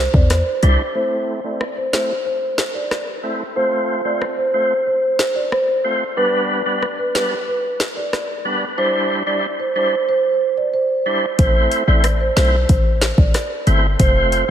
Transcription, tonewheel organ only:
0.62 G3 D4 E4 C5
0.95 A3 C4 E4 C5
1.44 A3 C4 E4 C5
1.93 A3 C4 E4 C5
3.23 A3 C4 E4 C5
3.56 A3 C4 F4 C5
4.05 A3 C4 F4 C5
4.54 A3 C4 F4 C5
5.84 A3 C4 F4 C5
6.17 G3 B3 D4 B4
6.66 G3 B3 D4 B4
7.15 G3 B3 D4 B4
8.45 G3 B3 D4 B4
8.78 G3 D4 E4 C5
9.27 G3 D4 E4 C5
9.76 G3 D4 E4 C5
11.06 G3 D4 E4 C5
11.38 A3 C4 E4 C5
11.87 A3 C4 E4 C5
12.36 A3 C4 E4 C5
13.67 A3 C4 E4 C5
13.99 A3 C4 F4 C5

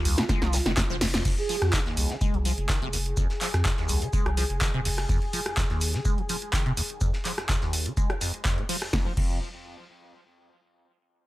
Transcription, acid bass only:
Already playing: D#2
0.18 D#3
0.29 G#3
0.42 F3
0.53 A#2
0.66 D#3
0.77 F2
0.90 F3
1.01 F2
1.14 F2
1.25 F2
1.49 F3
1.73 F2
1.86 D#2
2.10 D#3
2.21 G#3
2.34 F3
2.45 F3
2.69 D#3
2.82 C3
2.93 D#2
3.17 F2
3.41 F3
3.65 F2
3.78 D#2
4.02 D#3
4.13 G#3
4.26 F3
4.37 F3
4.61 D#3
4.74 C3
4.85 D#2
5.09 F2
5.33 F3
5.57 F2
5.70 D#2
5.94 D#3
6.05 G#3
6.18 F3
6.29 F3
6.53 D#3
6.66 C3
6.77 D#2
7.01 F2
7.25 F3
7.49 F2
7.62 D#2
7.86 D#3
7.97 G#3
8.10 F3
8.21 F2
8.45 F2
8.58 A#2
8.69 F3
8.93 F2
9.17 F2

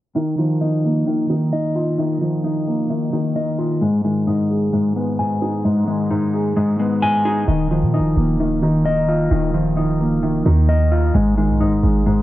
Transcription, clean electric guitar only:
0.15 D#3
0.38 D#3
0.61 D#4
1.07 D#3
1.30 D#3
1.53 D#5
1.76 F4
1.98 D#3
2.21 D#3
2.44 D#4
2.90 D#3
3.13 D#3
3.36 D#5
3.59 F4
3.81 G#3
4.05 G#3
4.27 D#4
4.73 G#3
4.96 G#3
5.19 G#5
5.42 G#4
5.65 G#3
5.88 G#3
6.11 D#4
6.56 G#3
6.79 G#3
7.02 G#5
7.25 G#4
7.48 D#3
7.71 D#3
7.94 D#4
8.40 D#3
8.62 D#3
8.85 D#5
9.08 F4
9.31 D#3
9.54 D#3
9.77 D#4
10.23 D#3
10.46 D#3
10.69 D#5
10.91 F4
11.14 G#3
11.38 G#3
11.60 D#4
12.06 G#3

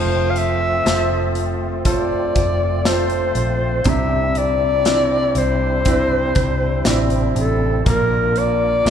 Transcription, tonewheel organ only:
Already playing: A3 C4 F4
3.84 C3 C4 D4 E4
7.84 A#3 D4 F4

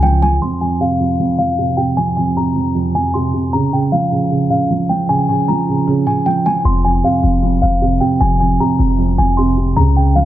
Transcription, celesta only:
0.03 G5
0.23 G#5
0.42 C6
0.61 G#5
0.81 F5
1.38 F5
1.77 G5
1.97 G#5
2.17 G#5
2.37 A#5
2.95 G#5
3.14 C6
3.53 A#5
3.73 G5
3.92 F5
4.50 F5
4.89 G5
5.09 G#5
5.29 G#5
5.48 A#5
6.07 G#5
6.26 G5
6.46 G#5
6.65 C6
6.85 G#5
7.04 F5
7.62 F5
8.00 G5
8.20 G#5
8.40 G#5
8.60 A#5
9.18 G#5
9.37 C6
9.76 A#5
9.97 G5
10.15 F5

